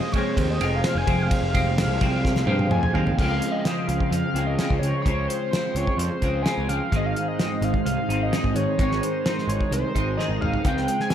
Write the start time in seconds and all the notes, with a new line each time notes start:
Already playing: G#3 C4 G#4 C5 D#5
0.12 G#3 C4 C#5, kick, ride, high conga, low conga
0.17 C3 F3
0.37 D#2 C5, kick, ride
0.48 D#5, high conga
0.59 F1 C3 F3 G#3 C4, ride
0.76 F5
0.84 F5, snare, ride, high conga
0.95 F1 G#5
1.07 F1 C3 F3 G#3 C4, kick, ride, low conga
1.20 F5, high conga
1.31 F5, kick, ride
1.42 F1
1.55 C3 F3 G#3 C4, kick, ride, low conga
1.66 high conga
1.78 snare, ride
1.87 C2
2.01 C2 C3 F3 G#3 C4, kick, ride, low conga
2.25 kick, snare
2.36 snare, high conga
2.46 G2 C3 F3 G#3 C4, high tom
2.59 high tom
2.70 F2 G#5, mid tom, high conga
2.83 mid tom
2.93 D#2 C3 F3 G#3 C4 F5, floor tom, low conga
3.07 floor tom, high conga
3.18 C#2 C#3 F3 G#3 F4 C5 F5, kick, crash
3.22 C4
3.42 closed hi-hat
3.51 D#5
3.65 C#3 F3 G#3 C4, snare, closed hi-hat
3.87 C#2 F5, closed hi-hat
4.00 kick
4.10 F2 F5, closed hi-hat
4.34 C#2 G#3 C4, closed hi-hat
4.38 F3
4.46 D#5
4.59 C#3 F3 G#3 C4, snare, closed hi-hat
4.70 C#2, kick
4.79 C#2 C4 C#5
4.83 F3 G#3, closed hi-hat
5.02 C#2 C#3 C#5, kick
5.06 F3 G#3 C4, closed hi-hat
5.28 C5, closed hi-hat
5.51 C#3 F3 G#3 C4 C5, snare, closed hi-hat
5.75 C#2 C#5, closed hi-hat
5.87 kick
5.97 F2 C5, closed hi-hat
6.22 C#2 F3 G#3 C4, kick, closed hi-hat
6.42 C#3 F3 G#3 G#5, snare, closed hi-hat
6.47 C4
6.57 C#2
6.69 C#2 F3 G#3 C4 F5, closed hi-hat
6.92 G#1 G#2 D#3 G#3 C4 D#4 F5, kick, closed hi-hat
6.96 D#4 D#5
7.06 F5
7.16 closed hi-hat
7.28 D#5
7.38 D#3 G#3 C4 D#4, snare, closed hi-hat
7.62 G#1 F5, closed hi-hat
7.74 kick
7.85 C2 F5, closed hi-hat
8.08 G#1 C4 D#4, closed hi-hat
8.13 G#3
8.23 D#5
8.31 G#2 D#3 G#3 C4 D#4, snare, closed hi-hat
8.44 G#1, kick
8.55 G#1 G#3 C4 D#4 C#5, closed hi-hat
8.77 G#1 G#2 D#3 G#3 C4 D#4 A#4 C#5, kick, closed hi-hat
8.91 snare
9.03 C5, closed hi-hat
9.24 D#3 G#3 C4 D#4 C5, snare, closed hi-hat
9.38 snare
9.48 G#1 C#5, closed hi-hat
9.61 kick
9.71 C2 C5, closed hi-hat
9.95 G#1 G#3 C4 D#4, kick, closed hi-hat
10.17 G#2 D#3 G#3 C4 D#4 D#5, snare
10.29 G#1
10.41 G#1 G#3 C4 D#4 F5, mid tom
10.54 floor tom
10.64 C#2 C#3 G#3 C4 F4 C5 G5, kick, closed hi-hat
10.77 snare
10.88 closed hi-hat
11.00 G#5, snare
11.09 C#3 G#3, snare, closed hi-hat